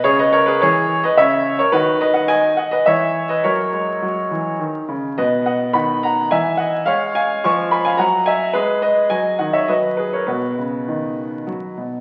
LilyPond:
<<
  \new Staff \with { instrumentName = "Grand piano" } { \time 3/4 \key b \major \tempo 4 = 106 <gis' cis''>16 <b' dis''>16 <ais' cis''>16 <gis' b'>16 <gis' cis''>8. <b' dis''>16 <cis'' e''>8. <ais' cis''>16 | <fis' b'>8 <b' dis''>16 <dis'' fis''>16 <dis'' gis''>8 <dis'' fis''>16 <b' dis''>16 <cis'' e''>8. <b' dis''>16 | <ais' cis''>2 r4 | <b' dis''>8 <dis'' fis''>8 <fis'' b''>8 <fis'' ais''>8 <e'' gis''>8 <dis'' fis''>8 |
<cis'' eis''>8 <eis'' gis''>8 <gis'' cis'''>8 <gis'' b''>16 <eis'' gis''>16 <fis'' ais''>8 <e'' gis''>8 | <gis' b'>8 <b' dis''>8 <dis'' gis''>8 <dis'' fis''>16 <cis'' e''>16 <b' dis''>8 <gis' b'>16 <ais' cis''>16 | <fis' b'>2~ <fis' b'>8 r8 | }
  \new Staff \with { instrumentName = "Grand piano" } { \clef bass \time 3/4 \key b \major cis4 e4 cis4 | dis2 e4 | fis8 gis8 fis8 e8 dis8 cis8 | b,4 dis4 e4 |
gis4 eis4 fis4 | gis4 fis8 dis8 fis4 | b,8 cis8 dis4 fis8 b,8 | }
>>